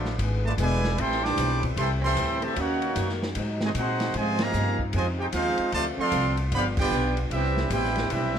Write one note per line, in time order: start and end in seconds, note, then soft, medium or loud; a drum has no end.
0.00 0.18 A1 loud
0.00 0.97 D3 medium
0.00 0.19 F3 medium
0.00 0.19 A3 medium
0.00 0.20 B3 loud
0.00 0.19 D4 medium
0.00 0.19 F4 medium
0.00 0.20 F4 medium
0.00 0.20 A4 medium
0.00 0.20 D5 loud
0.05 snare soft
0.18 0.57 G#1 loud
0.18 0.46 E3 medium
0.18 0.98 G#3 medium
0.18 0.47 B3 medium
0.18 0.47 D4 medium
0.18 2.55 E4 medium
0.18 ride medium
0.23 0.48 G#4 medium
0.44 0.51 A3 medium
0.44 0.51 F4 medium
0.44 0.52 B4 medium
0.44 0.52 D5 medium
0.44 0.52 A5 loud
0.58 0.97 E1 loud
0.58 0.95 B2 medium
0.58 0.96 D3 medium
0.58 0.85 E3 medium
0.58 0.95 G#3 medium
0.58 0.86 B3 medium
0.58 0.86 D4 medium
0.58 0.97 E4 loud
0.58 0.86 G#4 medium
0.58 0.97 B4 medium
0.58 0.97 D5 medium
0.58 0.97 G#5 loud
0.58 hi-hat pedal medium
0.58 ride medium
0.84 snare medium
0.97 1.36 A1 medium
0.97 1.25 A2 soft
0.97 1.21 E3 loud
0.97 1.22 G3 medium
0.97 2.55 G3 medium
0.97 1.26 G3 medium
0.97 2.55 A3 medium
0.97 1.23 C4 loud
0.97 2.55 C4 medium
0.97 1.26 C4 medium
0.97 1.24 A4 loud
0.97 1.24 E5 loud
0.97 1.24 G5 loud
0.97 1.24 C6 loud
0.97 ride medium
1.02 1.27 E4 medium
1.12 snare soft
1.22 1.62 E3 loud
1.22 1.63 G3 loud
1.22 1.63 D4 loud
1.22 1.63 C5 loud
1.22 1.64 G5 loud
1.22 1.64 A5 loud
1.22 1.63 D6 loud
1.22 snare soft
1.37 1.76 B1 loud
1.37 1.65 A2 medium
1.37 1.65 G3 medium
1.37 1.66 C4 medium
1.37 1.66 E4 medium
1.37 hi-hat pedal medium
1.37 ride medium
1.63 kick medium
1.63 ride medium
1.76 2.15 C2 loud
1.76 2.04 A2 medium
1.76 1.88 E3 medium
1.76 1.88 G3 medium
1.76 2.05 G3 medium
1.76 1.88 C4 medium
1.76 2.05 C4 medium
1.76 1.90 A4 medium
1.76 1.90 E5 medium
1.76 1.90 G5 medium
1.76 1.90 C6 loud
1.76 ride medium
1.80 2.06 E4 medium
2.01 2.39 E3 medium
2.01 2.39 G3 medium
2.01 2.39 C4 loud
2.01 2.40 A4 loud
2.01 2.40 E5 loud
2.01 2.40 G5 loud
2.01 2.40 C6 loud
2.16 2.55 D2 loud
2.16 2.44 A2 medium
2.16 2.44 G3 medium
2.16 2.44 C4 medium
2.16 2.45 E4 medium
2.16 hi-hat pedal medium
2.16 ride medium
2.41 2.56 C3 medium
2.41 2.56 E3 medium
2.41 2.56 A3 medium
2.41 2.57 G4 medium
2.41 2.58 C5 medium
2.41 2.57 E5 medium
2.41 2.57 A5 loud
2.41 ride medium
2.56 2.95 D#2 medium
2.56 3.35 C#3 medium
2.56 2.83 D#3 medium
2.56 3.98 F#3 medium
2.56 3.12 A#3 medium
2.56 3.35 A#3 medium
2.56 2.84 A#3 medium
2.56 3.12 C#4 medium
2.56 2.84 C#4 medium
2.56 3.98 D#4 medium
2.56 3.13 D#4 medium
2.56 3.11 F#4 medium
2.56 3.13 A#4 medium
2.56 3.13 C#5 medium
2.56 3.13 F#5 loud
2.56 ride medium
2.60 2.85 F#4 medium
2.82 ride medium
2.96 3.34 F#2 loud
2.96 3.23 D#3 medium
2.96 3.23 A#3 medium
2.96 3.24 C#4 medium
2.96 3.24 F#4 medium
2.96 hi-hat pedal medium
2.96 ride medium
3.09 snare soft
3.23 snare medium
3.35 3.74 G#2 medium
3.35 3.62 G#2 medium
3.35 3.98 C3 medium
3.35 3.63 F#3 medium
3.35 3.98 G#3 medium
3.35 3.63 C4 medium
3.35 3.64 D#4 medium
3.35 ride medium
3.61 3.68 C3 medium
3.61 3.68 D#3 medium
3.61 3.68 G#3 medium
3.61 3.70 F#4 medium
3.61 3.70 C5 medium
3.61 3.70 D#5 medium
3.61 3.70 G#5 medium
3.61 snare medium
3.74 4.02 G#2 medium
3.74 4.13 A#2 medium
3.74 4.02 F#3 medium
3.74 4.13 C4 medium
3.74 4.03 C4 medium
3.74 4.13 D#4 medium
3.74 4.03 D#4 medium
3.74 4.13 F#4 medium
3.74 4.13 G#4 medium
3.74 4.13 F#5 loud
3.74 hi-hat pedal medium
3.74 ride medium
3.78 4.14 C5 medium
4.00 snare medium
4.00 ride medium
4.14 4.53 G#2 medium
4.14 5.71 C3 medium
4.14 4.39 C3 medium
4.14 4.41 C#3 medium
4.14 5.71 F3 medium
4.14 4.42 F3 medium
4.14 4.39 F3 medium
4.14 4.40 G#3 medium
4.14 6.50 C4 medium
4.14 4.42 C4 medium
4.14 5.71 D#4 medium
4.14 4.41 F4 medium
4.14 4.41 D#5 medium
4.14 4.41 G#5 loud
4.14 ride medium
4.18 4.43 D#4 medium
4.18 4.41 C5 medium
4.39 4.80 C3 medium
4.39 4.80 F3 medium
4.39 4.80 A#3 medium
4.39 snare medium
4.39 ride medium
4.43 4.81 G#4 loud
4.43 4.81 D#5 loud
4.43 4.81 F5 loud
4.43 4.81 A#5 loud
4.53 4.92 G2 loud
4.53 4.81 C#3 medium
4.53 4.82 F3 medium
4.53 4.82 C4 medium
4.53 4.82 D#4 medium
4.53 hi-hat pedal medium
4.79 kick medium
4.93 5.32 F2 medium
4.93 5.05 C3 medium
4.93 5.20 C#3 soft
4.93 5.06 F3 medium
4.93 5.21 F3 soft
4.93 5.05 G#3 medium
4.93 5.21 C4 medium
4.93 5.07 F4 medium
4.93 5.07 C5 medium
4.93 5.07 D#5 medium
4.93 5.07 G#5 loud
4.93 ride medium
4.97 5.22 D#4 medium
5.19 5.27 D#4 medium
5.19 5.25 G4 medium
5.19 5.27 G#4 medium
5.19 5.27 C5 medium
5.19 5.26 G5 medium
5.32 5.56 D#2 loud
5.32 5.60 C#3 medium
5.32 5.60 F3 medium
5.32 5.70 G#3 medium
5.32 5.70 C4 medium
5.32 5.61 C4 medium
5.32 5.71 D#4 medium
5.32 5.61 D#4 medium
5.32 5.70 F4 medium
5.32 5.71 G#4 medium
5.32 5.71 C5 loud
5.32 5.71 F5 loud
5.32 hi-hat pedal medium
5.32 ride medium
5.58 muted upright bass stroke soft
5.58 ride medium
5.72 5.96 D2 medium
5.72 5.84 C3 medium
5.72 7.29 D3 medium
5.72 5.99 D3 medium
5.72 5.84 F3 medium
5.72 6.51 A3 medium
5.72 5.84 A3 medium
5.72 6.00 C4 medium
5.72 7.29 F4 medium
5.72 5.85 F4 medium
5.72 6.00 F4 medium
5.72 5.85 C5 loud
5.72 5.85 D5 loud
5.72 5.85 A5 loud
5.72 ride medium
5.76 6.01 A4 medium
5.98 6.35 F3 loud
5.98 6.35 A3 medium
5.98 6.35 C4 loud
5.98 6.36 A4 loud
5.98 6.36 D5 loud
5.98 6.36 F5 loud
5.98 6.36 C6 loud
5.98 muted upright bass stroke soft
6.12 6.50 C2 loud
6.12 6.39 D3 medium
6.12 6.40 C4 medium
6.12 6.40 F4 medium
6.12 6.40 A4 medium
6.12 hi-hat pedal medium
6.12 ride medium
6.37 ride medium
6.51 6.90 G1 loud
6.51 6.79 G2 medium
6.51 6.64 D3 medium
6.51 6.64 F3 medium
6.51 6.79 F3 medium
6.51 8.39 G3 medium
6.51 6.64 B3 medium
6.51 6.80 B3 medium
6.51 8.39 D4 medium
6.51 6.65 G4 medium
6.51 6.66 B5 loud
6.51 ride medium
6.55 6.80 D4 medium
6.55 6.66 D5 medium
6.55 6.66 F5 medium
6.77 7.15 B3 medium
6.77 7.14 D4 loud
6.77 7.15 F4 medium
6.77 7.15 G4 loud
6.77 7.15 B4 loud
6.77 7.15 D5 loud
6.77 7.15 G5 loud
6.77 kick loud
6.77 crash medium
6.91 7.30 B1 loud
6.91 7.19 G2 medium
6.91 7.19 F3 medium
6.91 7.19 B3 medium
6.91 7.20 D4 medium
6.91 hi-hat pedal medium
7.17 ride medium
7.30 7.69 C2 medium
7.30 7.58 C3 soft
7.30 8.39 E3 medium
7.30 7.68 G3 medium
7.30 7.59 G3 medium
7.30 7.59 B3 medium
7.30 7.68 C4 medium
7.30 7.69 C4 loud
7.30 7.68 E4 medium
7.30 8.39 E4 loud
7.30 7.69 G4 medium
7.30 7.69 B4 medium
7.30 7.69 E5 loud
7.30 ride medium
7.35 7.60 E4 medium
7.57 snare medium
7.70 8.09 A1 loud
7.70 8.07 B2 medium
7.70 7.97 C3 medium
7.70 7.98 G3 medium
7.70 7.98 B3 medium
7.70 8.07 E4 medium
7.70 8.08 E4 medium
7.70 7.98 E4 medium
7.70 8.07 G4 medium
7.70 8.08 B4 medium
7.70 8.08 C5 medium
7.70 8.08 G5 loud
7.70 hi-hat pedal medium
7.70 ride medium
7.84 snare soft
7.96 snare medium
7.96 ride medium
8.10 8.39 B1 medium
8.10 8.37 C3 medium
8.10 8.39 G3 medium
8.10 8.37 G3 soft
8.10 8.38 B3 medium
8.10 8.39 C4 medium
8.10 8.39 E4 medium
8.10 8.38 E4 medium
8.10 8.39 G4 medium
8.10 8.39 B4 medium
8.10 8.39 E5 loud
8.10 ride medium
8.35 snare soft